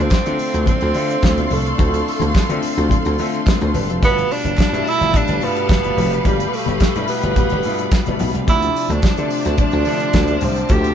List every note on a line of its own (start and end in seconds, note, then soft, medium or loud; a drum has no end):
0.00 0.25 D3 medium
0.00 0.26 A3 medium
0.00 0.26 C4 medium
0.00 0.68 C4 loud
0.00 0.27 F4 medium
0.00 3.98 A4 medium
0.00 3.98 D5 medium
0.00 3.98 F5 medium
0.00 3.98 C6 medium
0.10 kick loud
0.10 snare loud
0.10 clap loud
0.10 closed hi-hat medium
0.10 muted conga soft
0.25 0.44 D3 medium
0.25 0.36 D3 medium
0.25 0.44 A3 medium
0.25 0.45 C4 medium
0.25 0.45 F4 medium
0.25 closed hi-hat medium
0.39 open hi-hat medium
0.39 muted conga soft
0.54 0.64 D2 medium
0.54 0.82 D3 medium
0.54 0.82 A3 medium
0.54 0.82 C4 medium
0.54 0.83 F4 medium
0.54 closed hi-hat soft
0.66 1.56 C4 loud
0.66 kick loud
0.66 closed hi-hat medium
0.66 high conga medium
0.66 low conga medium
0.81 0.92 D2 medium
0.81 closed hi-hat soft
0.94 1.23 D3 medium
0.94 1.16 D3 medium
0.94 1.23 A3 medium
0.94 1.23 C4 medium
0.94 1.24 F4 medium
0.94 open hi-hat medium
1.10 closed hi-hat medium
1.23 1.44 D2 medium
1.23 kick loud
1.23 snare loud
1.23 clap loud
1.23 closed hi-hat medium
1.23 muted conga soft
1.37 1.66 D3 medium
1.37 1.66 A3 medium
1.37 1.66 C4 medium
1.37 1.66 F4 medium
1.37 closed hi-hat soft
1.37 high conga medium
1.50 1.72 C2 medium
1.50 2.64 A3 medium
1.50 open hi-hat medium
1.50 muted conga soft
1.50 low conga medium
1.66 closed hi-hat medium
1.78 2.00 D2 medium
1.78 2.26 D3 medium
1.78 2.26 A3 medium
1.78 2.27 C4 medium
1.78 1.86 E4 medium
1.78 kick loud
1.78 closed hi-hat medium
1.78 muted conga soft
1.78 low conga medium
1.86 2.30 F4 medium
1.94 closed hi-hat medium
1.94 high conga medium
2.06 open hi-hat medium
2.06 muted conga soft
2.20 2.31 D2 medium
2.20 closed hi-hat soft
2.20 high conga medium
2.34 kick loud
2.34 snare loud
2.34 clap loud
2.34 closed hi-hat medium
2.49 2.59 D3 loud
2.49 2.68 D3 medium
2.49 2.68 A3 medium
2.49 2.68 C4 medium
2.49 2.68 F4 medium
2.49 closed hi-hat medium
2.62 open hi-hat medium
2.62 muted conga soft
2.77 2.87 D2 loud
2.77 3.05 D3 medium
2.77 3.06 A3 medium
2.77 3.06 C4 medium
2.77 3.06 F4 medium
2.77 closed hi-hat soft
2.89 kick loud
2.89 closed hi-hat medium
2.89 muted conga soft
2.89 high conga medium
2.89 low conga medium
3.05 3.15 D2 loud
3.05 closed hi-hat soft
3.18 3.47 D3 medium
3.18 3.40 D3 loud
3.18 3.47 A3 medium
3.18 3.47 C4 medium
3.18 3.47 F4 medium
3.18 open hi-hat medium
3.18 muted conga soft
3.34 closed hi-hat soft
3.47 3.61 B4 medium
3.47 3.61 D5 medium
3.47 kick loud
3.47 snare loud
3.47 clap medium
3.47 closed hi-hat medium
3.61 3.71 D2 medium
3.61 3.74 A4 medium
3.61 3.74 C5 medium
3.61 closed hi-hat soft
3.61 high conga medium
3.74 3.90 G1 loud
3.74 3.89 G4 medium
3.74 3.89 B4 medium
3.74 open hi-hat medium
3.74 muted conga soft
3.74 low conga medium
3.90 3.99 F1 loud
3.90 4.08 F4 medium
3.90 4.16 A4 medium
3.90 closed hi-hat medium
4.02 4.23 G1 loud
4.02 4.49 B2 medium
4.02 4.49 G3 medium
4.02 4.50 A3 medium
4.02 4.34 B3 loud
4.02 4.09 E4 medium
4.02 8.44 G4 medium
4.02 8.44 B4 medium
4.02 8.44 F5 medium
4.02 6.23 A5 medium
4.02 kick loud
4.02 closed hi-hat medium
4.02 muted conga soft
4.02 low conga medium
4.10 4.53 F4 medium
4.18 closed hi-hat soft
4.18 high conga medium
4.31 4.90 D4 loud
4.31 open hi-hat medium
4.31 muted conga soft
4.44 4.54 G1 medium
4.44 closed hi-hat soft
4.44 high conga medium
4.57 kick loud
4.57 snare loud
4.57 clap loud
4.57 closed hi-hat medium
4.73 4.82 G2 medium
4.73 4.91 B2 medium
4.73 4.91 G3 medium
4.73 4.91 A3 medium
4.73 4.92 E4 medium
4.73 closed hi-hat soft
4.85 5.18 E4 loud
4.85 open hi-hat medium
4.85 muted conga soft
5.01 5.11 G1 medium
5.01 5.29 B2 medium
5.01 5.29 G3 medium
5.01 5.29 A3 medium
5.01 5.29 F4 medium
5.01 closed hi-hat soft
5.13 5.46 D4 loud
5.13 kick loud
5.13 closed hi-hat medium
5.13 high conga medium
5.13 low conga medium
5.28 5.38 G1 medium
5.28 closed hi-hat soft
5.41 5.71 G2 medium
5.41 5.70 B2 medium
5.41 5.70 G3 medium
5.41 5.70 A3 medium
5.41 6.26 B3 loud
5.41 5.70 F4 medium
5.41 open hi-hat medium
5.41 muted conga soft
5.57 closed hi-hat medium
5.69 5.90 G1 loud
5.69 kick loud
5.69 snare loud
5.69 clap loud
5.69 closed hi-hat medium
5.84 6.12 B2 medium
5.84 6.12 G3 medium
5.84 6.13 A3 medium
5.84 6.13 F4 medium
5.84 closed hi-hat soft
5.84 high conga medium
5.97 6.18 F1 loud
5.97 open hi-hat medium
5.97 low conga medium
6.13 closed hi-hat medium
6.24 6.46 G1 loud
6.24 6.32 A#2 medium
6.24 6.72 G3 medium
6.24 6.51 G3 medium
6.24 6.72 A3 medium
6.24 6.73 F4 medium
6.24 8.46 B5 medium
6.24 kick loud
6.24 closed hi-hat medium
6.24 muted conga soft
6.24 low conga medium
6.31 6.75 B2 medium
6.40 closed hi-hat medium
6.40 high conga medium
6.49 6.56 B3 medium
6.54 7.09 A3 medium
6.54 open hi-hat medium
6.66 6.77 G1 medium
6.66 closed hi-hat soft
6.66 high conga medium
6.80 kick loud
6.80 snare loud
6.80 clap medium
6.80 closed hi-hat medium
6.80 muted conga soft
6.95 7.05 G2 medium
6.95 7.13 B2 medium
6.95 7.14 G3 medium
6.95 7.14 A3 medium
6.95 7.14 E4 medium
6.95 closed hi-hat soft
7.08 8.16 B3 medium
7.08 open hi-hat medium
7.08 muted conga soft
7.23 7.33 G1 medium
7.23 7.51 B2 medium
7.23 7.51 G3 medium
7.23 7.52 A3 medium
7.23 7.52 F4 medium
7.23 closed hi-hat soft
7.36 kick loud
7.36 closed hi-hat medium
7.36 high conga medium
7.36 low conga medium
7.49 7.61 G1 loud
7.49 closed hi-hat soft
7.63 7.86 G2 medium
7.63 7.92 B2 medium
7.63 7.93 G3 medium
7.63 7.93 A3 medium
7.63 7.93 F4 medium
7.63 open hi-hat medium
7.63 muted conga soft
7.79 closed hi-hat medium
7.91 kick loud
7.91 snare loud
7.91 clap medium
7.91 closed hi-hat medium
7.91 muted conga soft
8.06 8.17 G1 medium
8.06 8.35 B2 medium
8.06 8.35 G3 medium
8.06 8.35 A3 medium
8.06 8.36 B3 medium
8.06 closed hi-hat soft
8.06 high conga medium
8.19 8.31 B1 medium
8.19 open hi-hat medium
8.19 muted conga soft
8.19 low conga medium
8.34 8.48 C2 medium
8.34 closed hi-hat medium
8.47 8.69 D2 loud
8.47 8.94 C3 medium
8.47 8.95 F3 medium
8.47 10.94 F3 medium
8.47 8.95 A3 medium
8.47 8.95 D4 medium
8.47 8.93 E4 loud
8.47 10.94 C5 medium
8.47 10.68 D5 medium
8.47 10.94 A5 medium
8.47 kick loud
8.47 closed hi-hat medium
8.47 low conga medium
8.62 closed hi-hat soft
8.62 high conga medium
8.75 open hi-hat medium
8.75 muted conga soft
8.89 9.00 D2 medium
8.89 9.60 D4 medium
8.89 closed hi-hat soft
8.89 high conga medium
9.03 kick loud
9.03 snare loud
9.03 clap loud
9.03 closed hi-hat medium
9.17 9.36 C3 medium
9.17 9.28 D3 medium
9.17 9.36 F3 medium
9.17 9.36 A3 medium
9.17 9.37 D4 medium
9.17 closed hi-hat soft
9.30 open hi-hat medium
9.45 9.55 D2 loud
9.45 9.74 C3 medium
9.45 9.74 F3 medium
9.45 9.74 A3 medium
9.45 9.74 D4 medium
9.45 snare soft
9.45 closed hi-hat soft
9.57 10.45 D4 medium
9.57 kick loud
9.57 closed hi-hat medium
9.57 high conga medium
9.57 low conga medium
9.71 9.83 D2 loud
9.71 closed hi-hat soft
9.85 10.14 C3 medium
9.85 10.07 D3 medium
9.85 10.15 F3 medium
9.85 10.15 A3 medium
9.85 10.15 D4 medium
9.85 open hi-hat medium
9.85 muted conga soft
10.00 closed hi-hat medium
10.13 10.35 D2 loud
10.13 kick loud
10.13 snare loud
10.13 clap medium
10.13 closed hi-hat medium
10.27 10.57 C3 medium
10.27 10.58 F3 medium
10.27 10.58 A3 medium
10.27 10.58 D4 medium
10.27 closed hi-hat soft
10.27 high conga medium
10.41 10.63 C2 loud
10.41 10.74 C4 medium
10.41 open hi-hat medium
10.41 muted conga soft
10.41 low conga medium
10.56 closed hi-hat medium
10.69 10.91 D2 loud
10.69 10.94 C3 medium
10.69 10.94 F3 medium
10.69 10.94 A3 medium
10.69 10.94 F4 medium
10.69 10.94 G4 loud
10.69 10.94 E5 medium
10.69 kick loud
10.69 closed hi-hat medium
10.69 muted conga soft
10.69 low conga medium
10.84 closed hi-hat soft
10.84 high conga medium